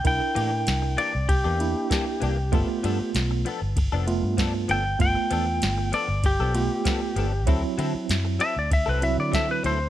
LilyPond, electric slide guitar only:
\new Staff \with { instrumentName = "Electric slide guitar" } { \time 4/4 \key g \mixolydian \tempo 4 = 97 g''4. d''8 g'2~ | g'4 r2 r8 g''8 | g''4. d''8 g'2 | r4. e''16 d''16 e''16 b'16 e''16 d''16 e''16 b'16 c''8 | }